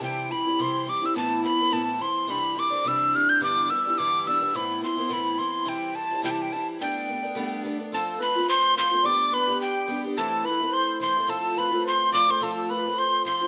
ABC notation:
X:1
M:4/4
L:1/8
Q:"Swing" 1/4=213
K:Flyd
V:1 name="Tin whistle"
g2 b2 c'2 d' e' | a2 b2 a2 c'2 | b2 d'2 e'2 f' g' | d'2 e'2 d'2 e'2 |
b2 c'2 b2 c'2 | g2 a2 (3g a g a z | g6 z2 | a2 b2 c'2 c'2 |
d'2 b2 g3 z | a2 b2 c'2 c'2 | a2 b2 c'2 d' c' | a2 b2 c'2 c'2 |]
V:2 name="Accordion"
z8 | z8 | z8 | z8 |
z8 | z8 | z8 | A2 B2 c2 c2 |
d2 B2 G3 z | A2 B2 c2 c2 | A2 B2 c2 d c | A A B2 c2 c2 |]
V:3 name="Twelve-string acoustic guitar"
[C,E,G,CE]2 [E,G,CE] [G,CE] [C,E,G,CE]2 [E,G,CE] [G,CE] | [A,,E,B,CE]2 [E,B,CE] [B,CE] [A,,E,B,CE]2 [E,B,CE]2 | [C,E,G,CD]2 [E,G,CD] [G,CD] [C,E,G,CD]2 [E,G,CD]2 | [G,,D,E,G,B,D]2 [E,G,B,D] [E,G,B,D] [G,,D,E,G,B,D]2 [E,G,B,D] [E,G,B,D] |
[A,,E,B,CE]2 [E,B,CE] [B,CE] [A,,E,B,CE]2 [E,B,CE]2 | [C,E,G,CE]2 [E,G,CE] [G,CE] [C,E,G,CE]2 [E,G,CE]2 | [G,A,B,D]2 [G,A,B,D] [A,B,D] [G,A,B,D]2 [G,A,B,D] [A,B,D] | [F,A,CF]2 [F,A,CF] [A,CF]3 [F,A,CF] [A,CF] |
[G,B,DG]2 [G,B,DG] [B,DG]3 [G,B,DG] [B,DG] | [A,,E,A,CE]2 [E,A,CE] [A,CE]3 [E,A,CE] [A,CE] | [F,A,CF]2 [F,A,CF] [A,CF]3 [F,A,CF] [A,CF] | [F,A,CF]2 [F,A,CF] [A,CF]3 [F,A,CF] [A,CF] |]